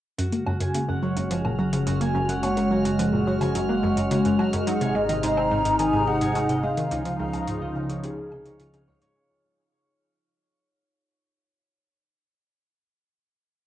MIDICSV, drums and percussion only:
0, 0, Header, 1, 2, 480
1, 0, Start_track
1, 0, Tempo, 560748
1, 159, Time_signature, 4, 2, 24, 8
1, 11701, End_track
2, 0, Start_track
2, 0, Title_t, "Drums"
2, 159, Note_on_c, 9, 42, 58
2, 245, Note_off_c, 9, 42, 0
2, 278, Note_on_c, 9, 42, 32
2, 364, Note_off_c, 9, 42, 0
2, 399, Note_on_c, 9, 77, 42
2, 485, Note_off_c, 9, 77, 0
2, 518, Note_on_c, 9, 42, 46
2, 604, Note_off_c, 9, 42, 0
2, 638, Note_on_c, 9, 42, 59
2, 724, Note_off_c, 9, 42, 0
2, 999, Note_on_c, 9, 42, 46
2, 1085, Note_off_c, 9, 42, 0
2, 1120, Note_on_c, 9, 42, 57
2, 1205, Note_off_c, 9, 42, 0
2, 1240, Note_on_c, 9, 77, 40
2, 1325, Note_off_c, 9, 77, 0
2, 1480, Note_on_c, 9, 42, 50
2, 1566, Note_off_c, 9, 42, 0
2, 1600, Note_on_c, 9, 42, 57
2, 1685, Note_off_c, 9, 42, 0
2, 1721, Note_on_c, 9, 42, 34
2, 1806, Note_off_c, 9, 42, 0
2, 1960, Note_on_c, 9, 42, 48
2, 2046, Note_off_c, 9, 42, 0
2, 2080, Note_on_c, 9, 42, 60
2, 2080, Note_on_c, 9, 77, 41
2, 2165, Note_off_c, 9, 42, 0
2, 2165, Note_off_c, 9, 77, 0
2, 2200, Note_on_c, 9, 42, 34
2, 2286, Note_off_c, 9, 42, 0
2, 2441, Note_on_c, 9, 42, 49
2, 2526, Note_off_c, 9, 42, 0
2, 2560, Note_on_c, 9, 42, 64
2, 2646, Note_off_c, 9, 42, 0
2, 2919, Note_on_c, 9, 42, 50
2, 2919, Note_on_c, 9, 77, 43
2, 3004, Note_off_c, 9, 42, 0
2, 3004, Note_off_c, 9, 77, 0
2, 3039, Note_on_c, 9, 42, 61
2, 3125, Note_off_c, 9, 42, 0
2, 3399, Note_on_c, 9, 42, 51
2, 3484, Note_off_c, 9, 42, 0
2, 3518, Note_on_c, 9, 42, 61
2, 3604, Note_off_c, 9, 42, 0
2, 3638, Note_on_c, 9, 42, 35
2, 3724, Note_off_c, 9, 42, 0
2, 3758, Note_on_c, 9, 77, 43
2, 3844, Note_off_c, 9, 77, 0
2, 3878, Note_on_c, 9, 42, 51
2, 3964, Note_off_c, 9, 42, 0
2, 3998, Note_on_c, 9, 42, 64
2, 4084, Note_off_c, 9, 42, 0
2, 4119, Note_on_c, 9, 42, 35
2, 4204, Note_off_c, 9, 42, 0
2, 4359, Note_on_c, 9, 42, 50
2, 4444, Note_off_c, 9, 42, 0
2, 4478, Note_on_c, 9, 42, 65
2, 4564, Note_off_c, 9, 42, 0
2, 4599, Note_on_c, 9, 77, 42
2, 4685, Note_off_c, 9, 77, 0
2, 4839, Note_on_c, 9, 42, 52
2, 4924, Note_off_c, 9, 42, 0
2, 4958, Note_on_c, 9, 42, 62
2, 5043, Note_off_c, 9, 42, 0
2, 5318, Note_on_c, 9, 42, 51
2, 5404, Note_off_c, 9, 42, 0
2, 5438, Note_on_c, 9, 42, 64
2, 5438, Note_on_c, 9, 77, 42
2, 5524, Note_off_c, 9, 42, 0
2, 5524, Note_off_c, 9, 77, 0
2, 5558, Note_on_c, 9, 42, 36
2, 5643, Note_off_c, 9, 42, 0
2, 5799, Note_on_c, 9, 42, 50
2, 5884, Note_off_c, 9, 42, 0
2, 5918, Note_on_c, 9, 42, 61
2, 6004, Note_off_c, 9, 42, 0
2, 6038, Note_on_c, 9, 42, 35
2, 6124, Note_off_c, 9, 42, 0
2, 6278, Note_on_c, 9, 42, 50
2, 6278, Note_on_c, 9, 77, 41
2, 6363, Note_off_c, 9, 42, 0
2, 6363, Note_off_c, 9, 77, 0
2, 6399, Note_on_c, 9, 42, 63
2, 6484, Note_off_c, 9, 42, 0
2, 6759, Note_on_c, 9, 42, 52
2, 6844, Note_off_c, 9, 42, 0
2, 6878, Note_on_c, 9, 42, 62
2, 6964, Note_off_c, 9, 42, 0
2, 7119, Note_on_c, 9, 77, 41
2, 7205, Note_off_c, 9, 77, 0
2, 7238, Note_on_c, 9, 42, 53
2, 7323, Note_off_c, 9, 42, 0
2, 7358, Note_on_c, 9, 42, 63
2, 7443, Note_off_c, 9, 42, 0
2, 7478, Note_on_c, 9, 42, 36
2, 7564, Note_off_c, 9, 42, 0
2, 7718, Note_on_c, 9, 42, 52
2, 7804, Note_off_c, 9, 42, 0
2, 11701, End_track
0, 0, End_of_file